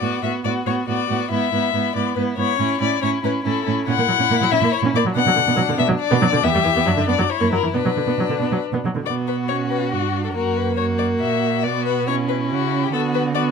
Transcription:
Already playing: violin D5
0.01 cello A2, viola B3, violin F#4
0.23 cello A2, viola B3, violin F#4 E5
0.45 cello A2, viola B3, violin F#4 D5
0.66 cello A2, viola B3, violin F#4 C#5
0.87 cello A2, viola B3, violin F#4 D5
1.09 cello A2, viola B3, violin F#4
1.30 cello G#2, viola B3, violin E4 E5
1.52 cello G#2, viola B3, violin E4
1.73 cello G#2, viola B3, violin E4
1.95 cello G#2, viola B3, violin E4 D5
2.16 cello G#2, viola B3, violin E4 B4
2.37 cello G#2, viola B3, violin E4 C#5
2.59 cello A2, viola C#4, violin E4
2.80 cello A2, viola C#4, violin E4 D5
3.01 cello A2, viola C#4, violin E4 C#5
3.23 cello A2, viola C#4, violin E4 B4
3.44 cello A2, viola C#4, violin E4 A4
3.66 cello A2, viola C#4, violin E4
3.87 cello A#2, viola C#4, violin E4 F#5
3.98 cello A#2, viola A#3
4.08 cello A#2, viola F#3
4.19 cello A#2, viola C#4
4.30 cello A#2, viola A#3
4.40 cello A#2, viola F#3
4.51 cello A#2, viola C#4, violin E5
4.61 cello A#2, viola A#3
4.72 violin C#5
4.82 cello A#2, viola C#4
4.94 cello A#2, viola A#3, violin D5
5.04 cello A#2, viola F#3
5.15 cello B2, viola B3, violin D4 F#5
5.26 cello B2, viola F#3
5.36 cello B2, viola D3
5.47 cello B2, viola B3
5.57 cello B2, viola F#3
5.69 cello B2, viola D3
5.77 cello B2, viola B3, violin E5
5.88 cello B2, viola F#3
6.01 violin D5
6.11 cello B2, viola B3
6.22 cello B2, viola F#3
6.32 cello B2, viola D3
6.44 cello E2, viola B3, violin G4 E5
6.55 cello E2, viola G3
6.64 cello E2, viola E3
6.76 cello E2, viola B3
6.86 cello F#2, viola F#3, violin D4
6.97 cello F#2, viola D3
7.07 cello F#2, viola B3, violin D5
7.19 cello F#2, viola F#3
7.30 violin E4 C#5
7.40 cello F#2, viola A#3
7.52 cello F#2, viola F#3, violin A#4
7.63 cello F#2, viola E3
7.74 cello B2, viola B3, violin D4 B4
7.85 cello B2, viola F#3
7.96 cello B2, viola D3
8.07 cello B2, viola B3
8.18 cello B2, viola F#3
8.29 cello B2, viola D3
8.39 cello B2, viola B3
8.51 cello B2, viola F#3
8.72 cello B2, viola B3
8.84 cello B2, viola F#3
8.95 cello B2, viola D3
9.06 cello B2, viola B3, violin F#4 D5
9.28 violin B4
9.48 viola C#4, violin C#5
9.70 violin B4
9.92 cello G2, viola D4, violin F#4
10.24 violin A4
10.33 cello F#2, viola A#3, violin F#4 A#4
10.57 violin B4
10.77 violin F#4 C#5
10.98 violin D5
11.20 cello A#2, violin E5
11.63 cello B2, viola B3, violin F#4 D5
11.86 violin B4
12.07 viola C#4, violin E4 C#5
12.29 violin B4
12.51 cello C#3, violin F#4
12.83 violin G4
12.93 cello D3, viola B3, violin F#4 A4
13.14 violin B4
13.35 viola B3, violin F#4 D5

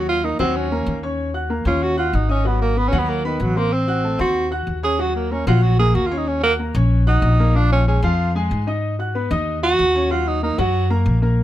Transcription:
Already playing: upright bass D#2, grand piano F#3 F#4 F#5
0.09 tenor saxophone F4
0.24 grand piano A#3 A#4 A#5, tenor saxophone D#4
0.39 upright bass D#2, grand piano F#3 F#4 F#5, tenor saxophone C4
0.56 tenor saxophone C#4
0.72 grand piano A#3 A#4 A#5
0.86 upright bass D#2
1.03 grand piano C#4 C#5 C#6
1.34 grand piano F#4 F#5 F#6
1.50 grand piano A#3 A#4 A#5
1.65 upright bass D#2, grand piano C#4 C#5 C#6, tenor saxophone F4
1.83 tenor saxophone F#4
1.97 tenor saxophone F4, grand piano F#4 F#5 F#6
2.13 upright bass G#1, tenor saxophone D#4
2.29 tenor saxophone C#4, grand piano D#4 D#5 D#6
2.44 grand piano F#3 F#4 F#5, tenor saxophone B3
2.62 tenor saxophone A#3
2.76 grand piano B3 B4 B5, tenor saxophone B3
2.88 grand piano F#3, tenor saxophone C#4
2.92 upright bass D#2, grand piano F#4 F#5
2.98 tenor saxophone B3
3.10 tenor saxophone A#3
3.24 tenor saxophone D#3, grand piano B3 B4 B5
3.40 upright bass A1, tenor saxophone F#3
3.56 tenor saxophone A#3, grand piano C4 C5 C6
3.73 tenor saxophone C4
3.88 grand piano F#4 F#5 F#6
4.04 grand piano A3 A4 A5
4.19 upright bass D#2, grand piano C4 C5 C6, tenor saxophone F#4
4.51 grand piano F#4 F#5 F#6
4.67 upright bass D#2
4.83 grand piano C#4 C#5 C#6, tenor saxophone G#4
4.99 grand piano F#3 F#4 F#5, tenor saxophone F#4
5.16 tenor saxophone A#3
5.31 grand piano A#3 A#4 A#5, tenor saxophone C#4
5.47 upright bass A#1, grand piano F#3 F#4 F#5, tenor saxophone F4
5.63 tenor saxophone F#4
5.79 grand piano A#3 A#4 A#5, tenor saxophone G#4
5.95 upright bass D#2, tenor saxophone F#4
6.06 tenor saxophone F4
6.11 grand piano C#4 C#5 C#6
6.18 tenor saxophone D#4
6.28 tenor saxophone C#4
6.43 tenor saxophone A#3, grand piano F#4 F#5 F#6
6.59 grand piano A#3 A#4 A#5
6.75 upright bass A#1, grand piano C#4 C#5 C#6
7.07 tenor saxophone D#4, grand piano F#4 F#5 F#6
7.22 upright bass A#1
7.40 grand piano A#3 A#4 A#5
7.55 grand piano F3 F4 F5, tenor saxophone D4
7.72 tenor saxophone C#4
7.87 grand piano G#3 G#4 G#5, tenor saxophone C#4
8.02 upright bass F2, grand piano F3 F4 F5, tenor saxophone F4
8.35 grand piano G#3 G#4 G#5
8.51 upright bass G#2
8.67 grand piano D#4 D#5 D#6
8.99 grand piano F#4 F#5 F#6
9.15 grand piano B3 B4 B5
9.31 upright bass D#2, grand piano D#4 D#5 D#6
9.63 grand piano F#4 F#5 F#6, tenor saxophone F#4
9.79 upright bass D#2
9.95 grand piano C#4 C#5 C#6
10.10 grand piano F#3 F#4 F#5, tenor saxophone F4
10.28 tenor saxophone D#4
10.43 grand piano A#3 A#4 A#5, tenor saxophone D#4
10.58 upright bass F#2, grand piano F#3 F#4 F#5, tenor saxophone F#4
10.90 grand piano A#3 A#4 A#5
11.06 upright bass A#1
11.22 grand piano A#3 A#4 A#5

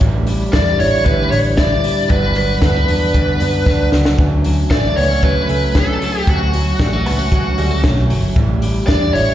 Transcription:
0.01 fingered electric bass A1, clean electric guitar A2 D3 G3 D4 E4, kick, closed hi-hat
0.27 clean electric guitar G3 D4 E4, open hi-hat
0.53 fingered electric bass E2, clean electric guitar D3 G3 D4 E4, lead electric guitar D5, kick, snare
0.79 fingered electric bass A1, clean electric guitar G3 D4 E4, lead electric guitar C#5, open hi-hat
1.05 clean electric guitar A2 D3 G3 D4 E4, lead electric guitar B4, kick, closed hi-hat
1.31 fingered electric bass A1, clean electric guitar G3 D4 E4, lead electric guitar C#5, open hi-hat
1.57 clean electric guitar D3 G3 D4 E4, lead electric guitar D5, kick, snare, closed hi-hat
1.83 clean electric guitar G3 D4 E4, open hi-hat
2.10 fingered electric bass G1, clean electric guitar G2 D3 F#3 B3 D4, lead electric guitar B4, kick, closed hi-hat
2.35 clean electric guitar F#3 B3 D4, lead electric guitar B4, open hi-hat
2.61 fingered electric bass D2, clean electric guitar D3 F#3 A3 B3 D4, kick, snare, closed hi-hat
2.76 clean electric guitar B3
2.87 fingered electric bass E2, clean electric guitar F#3 B3 D4, open hi-hat
3.14 clean electric guitar G2 D3 F#3 B3 D4, kick, closed hi-hat
3.39 fingered electric bass F#2, clean electric guitar F#3 B3 D4, open hi-hat
3.65 fingered electric bass D2, clean electric guitar D3 F#3 B3 D4, kick, snare
3.92 fingered electric bass C#2, clean electric guitar F#3 B3 D4, snare
4.05 snare
4.18 fingered electric bass D2, clean electric guitar D3 F#3 A3 C#4, kick, closed hi-hat
4.44 clean electric guitar F#3 A3 C#4, open hi-hat
4.70 fingered electric bass A1, clean electric guitar D3 F#3 A3 C#4, lead electric guitar D5, kick, snare
4.96 fingered electric bass C#2, clean electric guitar F#3 A3 B3 C#4, lead electric guitar C#5, open hi-hat
5.11 clean electric guitar C#4
5.23 clean electric guitar D3 F#3 A3 C#4, lead electric guitar B4, kick, closed hi-hat
5.49 fingered electric bass C#2, clean electric guitar F#3 A3 C#4, open hi-hat
5.75 clean electric guitar D3 F#3 A3 C#4, lead electric guitar A4, kick, snare, closed hi-hat
6.02 clean electric guitar F#3 A3 C#4, open hi-hat
6.27 fingered electric bass D2, clean electric guitar D3 F#3 A3 C#4, lead electric guitar F#4, kick, closed hi-hat
6.53 clean electric guitar F#3 A3 C#4, open hi-hat
6.80 fingered electric bass A1, clean electric guitar D3 F#3 G3 A3 C#4, kick, snare, closed hi-hat
6.93 clean electric guitar A3
7.06 fingered electric bass C#2, clean electric guitar F#3 A3 B3 C#4, open hi-hat
7.19 clean electric guitar C#4
7.32 clean electric guitar D3 F#3 A3 C#4, kick, closed hi-hat
7.58 fingered electric bass D2, clean electric guitar F#3 G3 A3 C#4, open hi-hat
7.71 clean electric guitar A3
7.84 fingered electric bass B1, clean electric guitar D3 F#3 A3 C#4, kick, snare, closed hi-hat
8.10 fingered electric bass G1, clean electric guitar F#3 A3 C#4, open hi-hat
8.36 fingered electric bass A1, clean electric guitar A2 D3 G3 D4 E4, kick, closed hi-hat
8.62 clean electric guitar G3 D4 E4, open hi-hat
8.87 fingered electric bass E2, clean electric guitar D3 G3 D4 E4, lead electric guitar D5, kick, snare, closed hi-hat
9.14 fingered electric bass A1, clean electric guitar G3 D4 E4, lead electric guitar C#5, open hi-hat

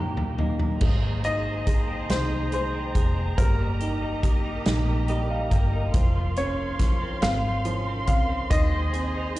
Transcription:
Already playing: upright piano D#2 A#2 A#5, string section D#2 D#3 A#3 G4, clean electric guitar D#3 A#3 G4, grand piano C5
0.17 floor tom
0.38 upright piano D#3 D#5, clean electric guitar A#3, floor tom
0.59 floor tom
0.81 fingered electric bass G#1, clean electric guitar D#3, upright piano G#3, string section G#4 C5 D#5 A#5, kick, crash
1.03 clean electric guitar A#3
1.24 upright piano D#4, clean electric guitar G#4, grand piano D#5, closed hi-hat
1.45 clean electric guitar C4
1.67 clean electric guitar A#3, upright piano G#4, kick, closed hi-hat
1.88 clean electric guitar C4
2.09 fingered electric bass C2, clean electric guitar D#3, upright piano D#4, grand piano C5, snare, closed hi-hat
2.31 clean electric guitar A#3
2.52 upright piano G#3, clean electric guitar G#4, grand piano C5, closed hi-hat
2.74 clean electric guitar C4
2.95 fingered electric bass F1, clean electric guitar A#3, upright piano G#4, kick, closed hi-hat
3.16 clean electric guitar C4
3.37 fingered electric bass G1, upright piano G3, clean electric guitar A#3, string section G4 A#4 D#5, grand piano A#4, kick, closed hi-hat
3.59 clean electric guitar A#3
3.80 upright piano D#4, clean electric guitar G4, closed hi-hat
4.02 clean electric guitar D#4
4.23 clean electric guitar A#3, upright piano G4, kick, closed hi-hat
4.45 clean electric guitar D#4
4.65 fingered electric bass A#1, clean electric guitar A#3, upright piano D#4, snare, closed hi-hat
4.88 clean electric guitar A#3
5.08 upright piano G3 D#5, clean electric guitar G4, closed hi-hat
5.30 clean electric guitar D#4, upright piano F5
5.51 fingered electric bass G1, clean electric guitar A#3, upright piano G4 G5, kick, closed hi-hat
5.73 clean electric guitar D#4
5.94 fingered electric bass F1, clean electric guitar F3, upright piano F3, string section F5 C6, kick, closed hi-hat
6.15 clean electric guitar F3
6.36 clean electric guitar C#4, upright piano C#4, grand piano C#5, closed hi-hat
6.79 upright piano F3, clean electric guitar F3, kick, snare, closed hi-hat
7.02 clean electric guitar C4
7.22 fingered electric bass G#1, clean electric guitar F3, upright piano C4, grand piano F5, snare, closed hi-hat
7.44 clean electric guitar F3
7.65 upright piano F3, clean electric guitar C#4, closed hi-hat
7.87 clean electric guitar C4
8.07 fingered electric bass C#2, clean electric guitar F3, upright piano C4, grand piano F5, kick, closed hi-hat
8.29 clean electric guitar C4
8.50 fingered electric bass D#2, upright piano D#3, clean electric guitar C4, string section G#4 C5 D#5, grand piano D#5, kick, closed hi-hat
8.72 clean electric guitar C4
8.93 upright piano C4, clean electric guitar G#4, closed hi-hat
9.14 clean electric guitar D#4
9.36 clean electric guitar C4, upright piano D#4, closed hi-hat

